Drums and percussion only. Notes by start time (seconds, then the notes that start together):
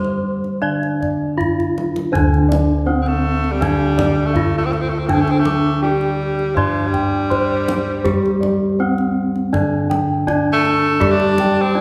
0.04 kendang slap
0.44 kendang slap
0.83 kendang slap
1.03 kendang low
1.41 kendang low
1.60 kendang low
1.78 kendang high
1.96 kendang high
2.15 kendang high, kendang low
2.34 kendang slap
2.52 kendang high
3.06 kendang slap
3.44 kendang slap
3.62 kendang high, kendang low
3.99 kendang slap, kendang high, kendang low
4.36 kendang slap, kendang low
4.73 kendang slap
5.09 kendang high, kendang low
5.28 kendang slap
5.45 kendang high
6.01 kendang slap
6.39 kendang slap
6.57 kendang low
6.94 kendang slap, kendang low
7.31 kendang slap, kendang low
7.68 kendang slap, kendang high
8.05 kendang high, kendang low
8.25 kendang slap
8.43 kendang high
8.98 kendang slap
9.36 kendang slap
9.54 kendang high, kendang low
9.91 kendang slap, kendang high
10.28 kendang slap, kendang low
10.65 kendang slap
11.01 kendang high, kendang low
11.20 kendang slap
11.38 kendang slap, kendang high